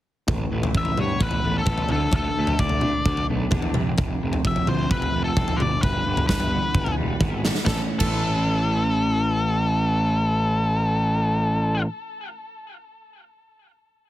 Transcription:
0.28 picked electric bass A1, clean electric guitar A2, kick, floor tom
0.51 picked electric bass A1, clean electric guitar E3
0.63 floor tom
0.75 picked electric bass A1, clean electric guitar E3, lead electric guitar E5, kick
0.85 floor tom
0.97 picked electric bass G2, clean electric guitar B3, lead electric guitar C#5, mid tom
1.20 picked electric bass A1, clean electric guitar E3, lead electric guitar B4, kick
1.31 floor tom
1.43 picked electric bass A1, clean electric guitar A3
1.58 lead electric guitar A4
1.66 picked electric bass A1, clean electric guitar B3, kick, mid tom
1.78 floor tom
1.89 picked electric bass D2, clean electric guitar D3, lead electric guitar A4, mid tom
2.12 picked electric bass D2, kick, floor tom
2.16 clean electric guitar D3, lead electric guitar A4
2.37 picked electric bass D2, clean electric guitar A3
2.47 floor tom
2.59 picked electric bass D2, clean electric guitar D3, lead electric guitar D5, kick
2.69 floor tom
2.81 clean electric guitar D4, mid tom
3.05 picked electric bass D2, clean electric guitar D3, kick
3.17 floor tom
3.30 picked electric bass B1, clean electric guitar A3
3.51 picked electric bass E2, clean electric guitar D4, kick, mid tom
3.62 floor tom
3.74 picked electric bass F1, clean electric guitar F2, mid tom
3.98 picked electric bass F1, clean electric guitar F2, kick, floor tom
4.22 picked electric bass F1, clean electric guitar C3
4.33 floor tom
4.45 picked electric bass F1, clean electric guitar F3, lead electric guitar E5, kick
4.56 floor tom
4.67 picked electric bass D2, clean electric guitar C4, lead electric guitar C5, mid tom
4.91 picked electric bass F1, clean electric guitar F3, lead electric guitar B4, kick
5.02 floor tom
5.15 picked electric bass F1, clean electric guitar A3
5.24 lead electric guitar A4
5.37 picked electric bass F1, clean electric guitar C4, kick, mid tom
5.48 floor tom
5.57 picked electric bass G1, lead electric guitar D5, mid tom
5.61 clean electric guitar G2
5.81 picked electric bass G1, clean electric guitar G2, lead electric guitar B4, kick, floor tom
6.06 picked electric bass G1, clean electric guitar D3
6.17 floor tom
6.28 picked electric bass G1, clean electric guitar E3, lead electric guitar B4, kick, snare
6.40 floor tom
6.53 clean electric guitar B3
6.75 picked electric bass G1, clean electric guitar E3, kick
6.86 floor tom
6.97 picked electric bass E1, clean electric guitar G3
7.20 picked electric bass G#1, clean electric guitar B3, kick, high tom
7.45 clean electric guitar G3, snare
7.55 snare
7.66 picked electric bass A1, clean electric guitar A2 E3 A3 C#4 E4, lead electric guitar A4, kick, snare
7.99 picked electric bass A1, clean electric guitar A2 E3 A3, lead electric guitar A4, kick, crash
8.04 clean electric guitar C#4 E4

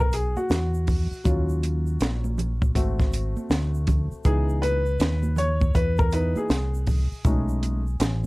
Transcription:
Already playing: fingered electric bass B1, upright piano B3 F#4
0.00 upright piano A#4
0.12 upright piano G#4, closed hi-hat, shaker
0.36 upright piano F#4, muted fingered electric bass stroke, high conga, shaker
0.49 fingered electric bass E2, snare, closed hi-hat, shaker
0.74 shaker
0.87 kick, open hi-hat, low conga, shaker
1.11 muted fingered electric bass stroke, shaker
1.24 fingered electric bass D#2, upright piano F#3 C#4 F4, kick, closed hi-hat, shaker
1.49 shaker
1.63 closed hi-hat, high conga, shaker
1.86 shaker
2.00 fingered electric bass A#1, snare, closed hi-hat, shaker
2.24 high conga, shaker
2.38 closed hi-hat, low conga, shaker
2.62 kick, high conga, shaker
2.75 fingered electric bass G#1, upright piano A3 C4 F#4, kick, closed hi-hat, shaker
2.99 kick, snare, shaker
3.12 closed hi-hat, shaker
3.37 muted fingered electric bass stroke, high conga, shaker
3.50 fingered electric bass D2, snare, closed hi-hat, shaker
3.74 shaker
3.87 kick, closed hi-hat, low conga, shaker
4.12 muted fingered electric bass stroke, shaker
4.24 fingered electric bass C#2, upright piano E3 B3 D#4 G#4, kick, closed hi-hat, shaker
4.49 shaker
4.62 upright piano B4, closed hi-hat, high conga, shaker
4.86 shaker
4.99 fingered electric bass D#2, snare, closed hi-hat, shaker
5.23 high conga, shaker
5.36 upright piano C#5, closed hi-hat, low conga, shaker
5.61 kick, high conga, shaker
5.74 fingered electric bass E2, upright piano B4, kick, closed hi-hat, shaker
5.98 upright piano A#4, kick, shaker
6.11 upright piano E3 B3 D#4 B4, closed hi-hat, shaker
6.36 upright piano G#4, muted fingered electric bass stroke, high conga, shaker
6.49 fingered electric bass C2, snare, closed hi-hat, shaker
6.74 shaker
6.87 kick, open hi-hat, low conga, shaker
7.12 muted fingered electric bass stroke, shaker
7.25 fingered electric bass B1, upright piano G#3 A3 C#4 D#4, kick, closed hi-hat, shaker
7.49 shaker
7.63 closed hi-hat, high conga, shaker
7.87 shaker
8.00 fingered electric bass A1, snare, closed hi-hat, shaker

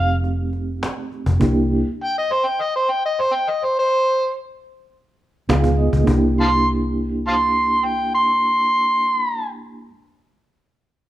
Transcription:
Already playing: fingered electric bass F1, reed electric piano A3 C4 D#4 G4, harmonica F5
0.24 cajon slap
0.53 cajon slap
0.83 cajon slap
1.12 cajon slap
1.26 fingered electric bass F1, cajon bass
1.40 fingered electric bass C2, reed electric piano A#3 D4 E4 G4, cajon bass
2.04 harmonica G5
2.18 harmonica D#5
2.32 harmonica C5
2.47 harmonica G5
2.62 harmonica D#5
2.76 harmonica C5
2.90 harmonica G5
3.06 harmonica D#5
3.21 harmonica C5
3.35 harmonica G5
3.50 harmonica D#5
3.64 harmonica C5
3.79 harmonica C5
5.49 fingered electric bass C#2, reed electric piano B3 D#4 F4 G#4 F5, cajon bass, cajon slap
5.64 cajon bass, cajon slap
5.78 reed electric piano D#5
5.93 fingered electric bass C#2, cajon bass
6.04 fingered electric bass C2, reed electric piano A#3 D4, cajon bass
6.08 reed electric piano E4 G4
6.41 harmonica F5 A5 C6
7.28 harmonica F5 A5 C6
7.85 harmonica G5
8.15 harmonica C6

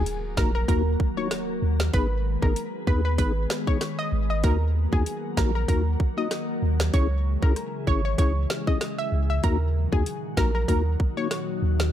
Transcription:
Already playing: ambient pad D#3 F#3 A#3 F#4 A#4, impact
0.06 closed hi-hat
0.37 sub bass A#1, tonewheel organ A#3 D#4 F#4, synth pluck A#4, kick, snare
0.55 synth pluck A#4
0.68 sub bass D#2, tonewheel organ A#3 D#4 F#4, synth pluck A#4, kick, closed hi-hat
1.00 kick
1.17 tonewheel organ A#3 D#4 F#4, synth pluck C#5
1.31 cross-stick, snare, closed hi-hat
1.62 sub bass D#2
1.80 snare
1.93 sub bass G#1, ambient pad G#3 B3 G#4 B4, tonewheel organ B3 D#4 G#4, synth pluck B4, kick, closed hi-hat
2.42 sub bass G#1, tonewheel organ B3 D#4 G#4, synth pluck A#4, kick
2.56 closed hi-hat
2.87 sub bass D#2, tonewheel organ B3 D#4 G#4, synth pluck B4, kick
3.05 synth pluck B4
3.18 sub bass G#1, tonewheel organ B3 D#4 G#4, synth pluck B4, kick, closed hi-hat
3.50 snare
3.67 tonewheel organ B3 D#4 G#4, synth pluck C#5, kick
3.81 cross-stick, snare, closed hi-hat
3.99 synth pluck D#5
4.12 sub bass G#1
4.30 synth pluck D#5
4.43 sub bass D#2, ambient pad D#3 F#3 A#3 F#4 A#4, tonewheel organ A#3 D#4 F#4, synth pluck A#4, kick, closed hi-hat
4.92 sub bass D#2, tonewheel organ A#3 D#4 F#4, synth pluck G#4, kick
5.06 closed hi-hat
5.37 sub bass A#1, tonewheel organ A#3 D#4 F#4, synth pluck A#4, kick, snare
5.55 synth pluck A#4
5.68 sub bass D#2, tonewheel organ A#3 D#4 F#4, synth pluck A#4, kick, closed hi-hat
6.00 kick
6.17 tonewheel organ A#3 D#4 F#4, synth pluck D#5
6.31 cross-stick, snare, closed hi-hat
6.62 sub bass D#2
6.80 snare
6.93 sub bass C#2, ambient pad C#3 E3 G#3 E4 G#4, tonewheel organ C#4 E4 G#4, synth pluck C#5, kick, closed hi-hat
7.42 sub bass C#2, tonewheel organ C#4 E4 G#4, synth pluck A#4, kick
7.56 cross-stick, closed hi-hat
7.87 sub bass G#1, tonewheel organ C#4 E4 G#4, synth pluck C#5, kick
8.05 synth pluck C#5
8.18 sub bass C#2, tonewheel organ C#4 E4 G#4, synth pluck C#5, kick, closed hi-hat
8.50 snare
8.67 tonewheel organ C#4 E4 G#4, synth pluck D#5, kick
8.81 cross-stick, snare, closed hi-hat
8.98 synth pluck E5
9.12 sub bass C#2
9.30 synth pluck E5
9.43 sub bass D#2, ambient pad A#2 D#3 F#3 D#4 F#4, tonewheel organ A#3 D#4 F#4, synth pluck A#4, kick, closed hi-hat
9.92 sub bass D#2, tonewheel organ A#3 D#4 F#4, synth pluck G#4, kick
10.06 closed hi-hat
10.37 sub bass A#1, tonewheel organ A#3 D#4 F#4, synth pluck A#4, kick, snare
10.55 synth pluck A#4
10.68 sub bass D#2, tonewheel organ A#3 D#4 F#4, synth pluck A#4, kick, closed hi-hat
11.00 kick
11.17 tonewheel organ A#3 D#4 F#4, synth pluck C#5
11.31 cross-stick, snare, closed hi-hat
11.62 sub bass D#2
11.80 snare

